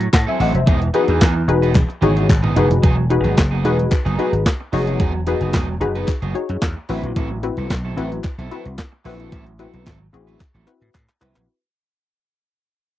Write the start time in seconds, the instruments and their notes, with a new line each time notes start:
0.00 muted clean electric guitar stroke, closed hi-hat
0.13 slap bass A2, analog polysynth F#5 A5, muted clean electric guitar stroke, kick, snare, clap, closed hi-hat
0.27 clean electric guitar F#3 C4 E4 A4, analog polysynth E5 G#5
0.39 slap bass A1, clean electric guitar F#3 C4 E4 A4, analog polysynth D#5 F#5, open hi-hat
0.54 slap bass F1, analog polysynth C5 E5, muted clean electric guitar stroke, closed hi-hat
0.66 slap bass E1, clean electric guitar E3 B3 D#4 G#4, kick, closed hi-hat
0.81 muted clean electric guitar stroke, closed hi-hat
0.94 clean electric guitar E3 B3 D#4 G#4, analog polysynth D#4 F#4 G#4 B4, closed hi-hat
1.08 slap bass E2, clean electric guitar E3 B3 D#4 G#4, closed hi-hat
1.20 slap bass E2, clean electric guitar E3 B3 D#4 G#4, kick, snare, clap, closed hi-hat
1.35 muted clean electric guitar stroke
1.48 slap bass E1, analog polysynth D#4 F#4 G#4 B4, muted clean electric guitar stroke, closed hi-hat
1.62 clean electric guitar E3 B3 D#4 B4, closed hi-hat
1.74 muted clean electric guitar stroke, kick, clap, closed hi-hat, high tom
1.89 muted clean electric guitar stroke, closed hi-hat
2.01 slap bass G#1, clean electric guitar E3 B3 D#4 G#4, analog polysynth D#4 F#4 G#4 C#5, closed hi-hat, mid tom
2.16 clean electric guitar E3 B3 D#4 G#4, closed hi-hat
2.29 slap bass G#1, kick, clap, closed hi-hat, mid tom
2.43 clean electric guitar E3 B3 D#4 G#4, mid tom
2.55 slap bass F1, clean electric guitar E3 B3 D#4 G#4, analog polysynth D#4 F#4 G#4 B4, closed hi-hat, floor tom
2.70 muted clean electric guitar stroke, closed hi-hat, floor tom
2.82 slap bass E1, clean electric guitar F#3 B3 D#4 G#4, kick, closed hi-hat
2.97 muted clean electric guitar stroke
3.10 analog polysynth D#4 F#4 G#4 B4, muted clean electric guitar stroke, closed hi-hat
3.24 slap bass G#1, clean electric guitar F#3 B3 D#4 G#4, closed hi-hat
3.37 slap bass F#1, muted clean electric guitar stroke, kick, snare, clap, closed hi-hat
3.51 clean electric guitar F#3 B3 D#4 G#4
3.63 slap bass E1, clean electric guitar F#3 B3 D#4 G#4, analog polysynth D#4 F#4 G#4 B4, closed hi-hat
3.78 muted clean electric guitar stroke, closed hi-hat
3.91 muted clean electric guitar stroke, kick, clap, closed hi-hat
4.05 slap bass F#1, clean electric guitar F#3 B3 D#4 G#4, closed hi-hat
4.18 clean electric guitar F#3 B3 D#4 G#4, analog polysynth D#4 F#4 G#4 B4, closed hi-hat
4.33 slap bass G#1, muted clean electric guitar stroke, closed hi-hat
4.46 muted clean electric guitar stroke, kick, snare, clap, closed hi-hat
4.60 muted clean electric guitar stroke
4.72 slap bass F1, clean electric guitar F#3 B3 D#4 G#4, analog polysynth D#4 F#4 G#4 C#5, open hi-hat
4.87 clean electric guitar F#3 B3 D#4 G#4, closed hi-hat
5.00 slap bass E1, clean electric guitar F#3 B3 D#4 G#4, kick, closed hi-hat
5.14 muted clean electric guitar stroke
5.27 clean electric guitar F#3 B3 D#4 G#4, analog polysynth D#4 F#4 G#4 B4, closed hi-hat
5.41 slap bass F#1, clean electric guitar F#3 B3 D#4 G#4, closed hi-hat
5.53 slap bass E1, clean electric guitar F#3 B3 D#4 G#4, kick, snare, clap, closed hi-hat
5.69 muted clean electric guitar stroke
5.81 slap bass F#1, analog polysynth D#4 F#4 G#4 B4, muted clean electric guitar stroke, closed hi-hat
5.95 clean electric guitar F#3 B3 D#4 B4, closed hi-hat
6.08 muted clean electric guitar stroke, kick, clap, closed hi-hat
6.22 slap bass F#1, clean electric guitar F#3 B3 D#4 G#4, closed hi-hat
6.34 analog polysynth D#4 F#4 G#4 C#5, muted clean electric guitar stroke, closed hi-hat
6.49 slap bass F#2, muted clean electric guitar stroke, closed hi-hat
6.62 slap bass E2, muted clean electric guitar stroke, kick, snare, clap, closed hi-hat
6.77 muted clean electric guitar stroke
6.89 slap bass A1, clean electric guitar F#3 C4 E4 B4, analog polysynth C4 E4 F#4 B4, open hi-hat
7.03 slap bass A#1, muted clean electric guitar stroke, closed hi-hat
7.16 slap bass A1, clean electric guitar F#3 C4 E4 A4, kick, closed hi-hat
7.30 muted clean electric guitar stroke
7.43 analog polysynth C4 E4 F#4 B4, muted clean electric guitar stroke, closed hi-hat
7.57 slap bass C2, clean electric guitar F#3 C4 E4 A4, closed hi-hat
7.70 slap bass B1, muted clean electric guitar stroke, kick, snare, clap, closed hi-hat
7.84 clean electric guitar F#3 C4 E4 A4
7.97 slap bass A1, clean electric guitar F#3 C4 E4 A4, analog polysynth C4 E4 F#4 B4, closed hi-hat
8.12 muted clean electric guitar stroke, closed hi-hat
8.24 muted clean electric guitar stroke, kick, clap, closed hi-hat
8.38 slap bass B1, clean electric guitar F#3 C4 E4 A4, closed hi-hat
8.51 clean electric guitar F#3 C4 E4 A4, analog polysynth C4 E4 F#4 B4, closed hi-hat
8.65 slap bass C2, muted clean electric guitar stroke, closed hi-hat
8.78 muted clean electric guitar stroke, kick, snare, clap, closed hi-hat
8.92 muted clean electric guitar stroke
9.04 slap bass A#1, clean electric guitar F#3 C4 E4 A4, analog polysynth C4 E4 F#4 B4, open hi-hat
9.19 clean electric guitar F#3 C4 E4 A4, closed hi-hat
9.32 slap bass A1, clean electric guitar F#3 C4 E4 A4, kick, closed hi-hat
9.46 muted clean electric guitar stroke, closed hi-hat
9.59 clean electric guitar F#3 C4 E4 A4, analog polysynth C4 E4 F#4 B4, closed hi-hat
9.73 slap bass B1, clean electric guitar F#3 C4 E4 A4, closed hi-hat
9.86 slap bass G#1, clean electric guitar F#3 C4 E4 A4, kick, snare, clap, closed hi-hat
10.00 muted clean electric guitar stroke
10.12 slap bass A1, analog polysynth C4 E4 F#4 G#4, muted clean electric guitar stroke, closed hi-hat
10.27 clean electric guitar F#3 C4 E4 B4, closed hi-hat
10.40 muted clean electric guitar stroke, kick, clap, closed hi-hat
10.54 slap bass A1, clean electric guitar F#3 C4 E4 A4, closed hi-hat
10.67 analog polysynth C4 E4 F#4 B4, muted clean electric guitar stroke, clap, closed hi-hat
10.81 slap bass A2, muted clean electric guitar stroke, closed hi-hat
10.94 slap bass A2, muted clean electric guitar stroke, kick, clap, closed hi-hat
11.09 muted clean electric guitar stroke, clap
11.21 slap bass C2, clean electric guitar F#3 C4 E4 B4, analog polysynth C4 E4 F#4 B4, clap, closed hi-hat
11.36 slap bass A#1, muted clean electric guitar stroke, clap, closed hi-hat